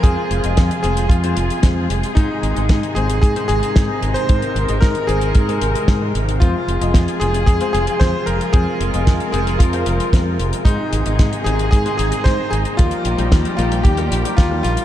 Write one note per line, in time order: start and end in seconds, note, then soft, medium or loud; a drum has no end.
0.00 0.16 F2 medium
0.00 10.62 C3 medium
0.00 2.13 F3 medium
0.00 6.38 G#3 medium
0.00 2.13 F4 medium
0.00 4.25 G#4 medium
0.00 0.79 G#4 loud
0.00 kick loud
0.04 0.41 G#3 medium
0.04 0.41 C4 medium
0.04 0.41 F4 medium
0.04 0.41 C5 medium
0.04 closed hi-hat medium
0.31 0.42 F1 medium
0.31 closed hi-hat medium
0.44 0.56 F1 medium
0.44 0.81 G#3 medium
0.44 0.81 C4 medium
0.44 0.81 F4 medium
0.44 0.81 D#5 medium
0.44 closed hi-hat medium
0.57 0.69 F2 medium
0.57 kick loud
0.57 snare loud
0.57 closed hi-hat medium
0.71 closed hi-hat medium
0.83 1.07 F1 medium
0.83 1.02 G#3 medium
0.83 1.02 C4 medium
0.83 1.02 F4 medium
0.83 1.11 G#4 medium
0.83 1.02 C5 medium
0.83 closed hi-hat medium
0.97 closed hi-hat medium
1.09 1.33 F2 medium
1.09 1.85 F4 medium
1.09 kick loud
1.09 closed hi-hat medium
1.24 1.60 G#3 medium
1.24 1.60 C4 medium
1.24 1.60 F4 medium
1.24 1.60 C5 loud
1.24 closed hi-hat medium
1.37 1.49 F1 medium
1.37 closed hi-hat medium
1.50 closed hi-hat medium
1.63 1.87 F2 medium
1.63 2.14 G#3 medium
1.63 2.14 C4 medium
1.63 2.13 F4 medium
1.63 2.14 C5 medium
1.63 kick loud
1.63 snare loud
1.63 closed hi-hat medium
1.90 2.02 F1 medium
1.90 closed hi-hat medium
2.03 closed hi-hat medium
2.15 2.53 G#2 medium
2.15 2.28 G#2 loud
2.15 6.38 D#3 medium
2.15 2.53 G#3 medium
2.15 2.53 C4 medium
2.15 2.98 D#4 medium
2.15 2.53 D#4 medium
2.15 6.38 D#4 medium
2.15 2.53 C5 medium
2.15 kick loud
2.15 closed hi-hat medium
2.43 2.55 G#1 medium
2.43 closed hi-hat medium
2.56 2.68 G#1 medium
2.56 2.93 G#2 medium
2.56 2.93 G#3 medium
2.56 2.93 C4 medium
2.56 2.93 D#4 medium
2.56 2.93 D#5 loud
2.56 closed hi-hat medium
2.69 2.81 G#2 loud
2.69 kick loud
2.69 snare loud
2.69 closed hi-hat medium
2.83 closed hi-hat medium
2.95 3.19 G#1 medium
2.95 3.15 G#2 medium
2.95 3.15 G#3 medium
2.95 3.15 C4 medium
2.95 3.15 D#4 medium
2.95 3.20 G#4 medium
2.95 3.15 C5 medium
2.95 closed hi-hat medium
3.10 closed hi-hat medium
3.21 3.34 G#2 loud
3.21 3.46 G#4 loud
3.21 kick loud
3.21 closed hi-hat medium
3.36 3.73 G#2 loud
3.36 3.73 G#3 medium
3.36 3.73 C4 medium
3.36 3.73 D#4 medium
3.36 3.73 C5 loud
3.36 closed hi-hat medium
3.48 3.61 G#1 medium
3.48 4.17 G#4 loud
3.48 closed hi-hat medium
3.63 closed hi-hat medium
3.76 4.26 G#2 medium
3.76 3.88 G#2 medium
3.76 4.26 G#3 medium
3.76 4.26 C4 medium
3.76 4.26 D#4 medium
3.76 4.26 C5 medium
3.76 kick loud
3.76 snare loud
3.76 closed hi-hat medium
4.03 4.14 G#1 medium
4.03 closed hi-hat medium
4.14 4.83 C5 loud
4.14 closed hi-hat medium
4.29 4.66 G#2 medium
4.29 4.41 G#2 medium
4.29 4.66 G#3 medium
4.29 4.66 C4 medium
4.29 4.66 D#4 medium
4.29 6.39 A#4 medium
4.29 4.66 C5 medium
4.29 kick loud
4.29 closed hi-hat medium
4.42 closed hi-hat medium
4.56 4.67 G#1 medium
4.56 closed hi-hat medium
4.69 4.80 G#1 medium
4.69 5.06 G#2 medium
4.69 5.06 G#3 medium
4.69 5.06 C4 medium
4.69 5.06 D#4 medium
4.69 5.06 D#5 loud
4.69 closed hi-hat medium
4.81 4.94 G#2 medium
4.81 5.09 A#4 loud
4.81 kick loud
4.81 snare loud
4.81 closed hi-hat medium
4.95 closed hi-hat soft
5.07 5.32 G#1 medium
5.07 5.27 G#2 medium
5.07 5.27 G#3 medium
5.07 5.27 C4 medium
5.07 5.27 D#4 medium
5.07 6.10 G#4 loud
5.07 5.27 C5 medium
5.07 closed hi-hat medium
5.21 closed hi-hat medium
5.35 5.58 G#2 medium
5.35 kick loud
5.35 closed hi-hat medium
5.49 5.72 G#2 medium
5.49 5.72 G#3 medium
5.49 5.72 C4 medium
5.49 5.72 D#4 medium
5.49 5.72 C5 loud
5.49 closed hi-hat medium
5.62 5.73 G#1 medium
5.62 closed hi-hat medium
5.75 5.98 G#2 medium
5.75 5.98 G#3 medium
5.75 5.98 C4 medium
5.75 5.98 D#4 medium
5.75 5.98 C5 medium
5.75 closed hi-hat medium
5.88 6.11 G#2 medium
5.88 kick loud
5.88 snare loud
5.88 closed hi-hat medium
6.02 6.38 G#2 medium
6.02 6.38 G#3 medium
6.02 6.38 C4 medium
6.02 6.38 D#4 medium
6.02 6.38 C5 medium
6.15 6.38 G#1 medium
6.15 closed hi-hat medium
6.29 closed hi-hat medium
6.40 6.53 F2 medium
6.40 10.62 F3 medium
6.40 6.78 G#3 medium
6.40 12.75 G#3 medium
6.40 6.78 C4 medium
6.40 7.23 F4 medium
6.40 6.78 F4 medium
6.40 10.62 F4 medium
6.40 8.52 G#4 medium
6.40 6.78 C5 medium
6.40 kick loud
6.40 closed hi-hat medium
6.68 6.80 F1 medium
6.68 closed hi-hat medium
6.81 6.93 F1 medium
6.81 7.18 G#3 medium
6.81 7.18 C4 medium
6.81 7.18 F4 medium
6.81 7.18 D#5 loud
6.81 closed hi-hat medium
6.94 7.06 F2 loud
6.94 kick loud
6.94 snare loud
6.94 closed hi-hat medium
7.08 closed hi-hat medium
7.20 7.44 F1 medium
7.20 7.39 G#3 medium
7.20 7.39 C4 medium
7.20 7.39 F4 medium
7.20 7.45 G#4 medium
7.20 7.39 C5 medium
7.20 closed hi-hat medium
7.34 closed hi-hat medium
7.46 7.59 F2 medium
7.46 7.71 G#4 loud
7.46 kick loud
7.46 closed hi-hat medium
7.61 7.98 G#3 medium
7.61 7.98 C4 medium
7.61 7.98 F4 medium
7.61 7.98 C5 loud
7.61 closed hi-hat medium
7.73 7.86 F1 loud
7.73 8.01 G#4 loud
7.73 closed hi-hat medium
7.87 closed hi-hat medium
8.00 8.12 F2 medium
8.00 8.51 G#3 medium
8.00 8.51 C4 medium
8.00 8.51 F4 medium
8.00 8.28 C5 loud
8.00 8.51 C5 medium
8.00 kick loud
8.00 snare loud
8.00 closed hi-hat medium
8.26 8.39 F1 medium
8.26 8.54 A#4 loud
8.26 closed hi-hat medium
8.41 closed hi-hat medium
8.53 8.65 F2 loud
8.53 8.91 G#3 medium
8.53 8.91 C4 medium
8.53 8.91 F4 medium
8.53 9.31 G#4 loud
8.53 10.64 A#4 medium
8.53 8.91 C5 medium
8.53 kick loud
8.53 closed hi-hat medium
8.80 8.92 F1 medium
8.80 closed hi-hat medium
8.94 9.05 F1 medium
8.94 9.30 G#3 medium
8.94 9.30 C4 medium
8.94 9.30 F4 medium
8.94 9.30 D#5 loud
8.94 closed hi-hat medium
9.07 9.19 F2 loud
9.07 kick loud
9.07 snare loud
9.07 closed hi-hat medium
9.20 closed hi-hat medium
9.32 9.57 F1 medium
9.32 9.52 G#3 medium
9.32 9.52 C4 medium
9.32 9.52 F4 medium
9.32 9.58 G#4 medium
9.32 9.52 C5 medium
9.32 closed hi-hat medium
9.47 closed hi-hat medium
9.59 9.83 F2 medium
9.59 10.35 F4 medium
9.59 kick loud
9.59 closed hi-hat loud
9.73 10.10 G#3 medium
9.73 10.10 C4 medium
9.73 10.10 F4 medium
9.73 10.10 C5 loud
9.73 closed hi-hat medium
9.86 9.98 F1 medium
9.86 closed hi-hat medium
10.00 closed hi-hat medium
10.13 10.36 F2 medium
10.13 10.63 G#3 medium
10.13 10.63 C4 medium
10.13 10.63 F4 medium
10.13 10.63 C5 medium
10.13 kick loud
10.13 snare loud
10.13 closed hi-hat medium
10.39 10.51 F1 medium
10.39 closed hi-hat medium
10.53 closed hi-hat medium
10.65 10.77 G#2 loud
10.65 11.03 G#2 medium
10.65 12.77 C3 medium
10.65 12.77 D#3 medium
10.65 11.03 G#3 medium
10.65 11.03 C4 medium
10.65 11.48 D#4 loud
10.65 11.03 D#4 medium
10.65 14.85 D#4 medium
10.65 12.77 G#4 medium
10.65 11.03 C5 medium
10.65 kick loud
10.65 closed hi-hat loud
10.93 11.04 G#1 medium
10.93 closed hi-hat medium
11.06 11.18 G#1 medium
11.06 11.43 G#2 medium
11.06 11.43 G#3 medium
11.06 11.43 C4 medium
11.06 11.43 D#4 medium
11.06 11.43 D#5 loud
11.06 closed hi-hat medium
11.19 11.31 G#2 loud
11.19 kick loud
11.19 snare loud
11.19 closed hi-hat medium
11.33 closed hi-hat medium
11.44 11.69 G#1 loud
11.44 11.64 G#2 medium
11.44 11.64 G#3 medium
11.44 11.64 C4 medium
11.44 11.64 D#4 medium
11.44 11.69 G#4 medium
11.44 11.64 C5 medium
11.44 closed hi-hat medium
11.59 closed hi-hat medium
11.71 11.84 G#2 loud
11.71 11.96 G#4 loud
11.71 kick loud
11.71 closed hi-hat medium
11.86 12.22 G#2 loud
11.86 12.22 G#3 medium
11.86 12.22 C4 medium
11.86 12.22 D#4 medium
11.86 12.22 C5 loud
11.86 closed hi-hat medium
11.97 12.11 G#1 loud
11.97 12.26 G#4 loud
11.97 closed hi-hat loud
12.12 closed hi-hat medium
12.24 12.76 G#2 medium
12.24 12.37 G#2 medium
12.24 12.76 G#3 medium
12.24 12.75 C4 medium
12.24 12.75 D#4 medium
12.24 12.52 C5 loud
12.24 12.76 C5 medium
12.24 kick loud
12.24 snare loud
12.24 closed hi-hat medium
12.51 12.64 G#1 medium
12.51 12.57 G#4 loud
12.51 closed hi-hat medium
12.65 closed hi-hat medium
12.77 12.91 D#2 loud
12.77 14.85 F3 medium
12.77 13.15 G3 medium
12.77 14.85 G3 medium
12.77 14.85 A#3 medium
12.77 13.15 D#4 medium
12.77 13.55 F4 loud
12.77 13.15 F4 medium
12.77 14.85 G4 medium
12.77 13.15 A#4 medium
12.77 kick loud
12.77 closed hi-hat medium
12.91 closed hi-hat medium
13.05 13.17 A#1 medium
13.05 closed hi-hat loud
13.18 13.30 A#1 medium
13.18 13.55 G3 medium
13.18 13.55 D#4 medium
13.18 13.55 F4 medium
13.18 13.55 C5 loud
13.18 closed hi-hat medium
13.32 13.43 D#2 medium
13.32 kick loud
13.32 snare loud
13.32 closed hi-hat medium
13.45 closed hi-hat soft
13.57 13.81 A#1 medium
13.57 13.77 G3 medium
13.57 13.77 D#4 medium
13.57 13.82 F4 medium
13.57 13.77 F4 medium
13.57 13.77 A#4 medium
13.57 closed hi-hat medium
13.72 closed hi-hat medium
13.83 14.08 D#2 medium
13.83 14.60 G4 medium
13.83 kick loud
13.83 closed hi-hat medium
13.97 14.22 G3 loud
13.97 14.22 D#4 medium
13.97 14.22 F4 medium
13.97 14.22 A#4 loud
13.97 closed hi-hat medium
14.11 14.23 A#1 medium
14.11 closed hi-hat loud
14.25 14.48 G3 medium
14.25 14.48 D#4 medium
14.25 14.48 F4 medium
14.25 14.48 A#4 medium
14.25 closed hi-hat medium
14.37 14.61 D#2 medium
14.37 14.62 F4 loud
14.37 kick loud
14.37 snare loud
14.37 closed hi-hat medium
14.51 14.85 G3 medium
14.51 14.85 D#4 medium
14.51 14.85 F4 medium
14.51 14.85 A#4 loud
14.63 14.76 A#1 medium
14.63 14.85 F4 loud
14.63 closed hi-hat medium
14.77 closed hi-hat medium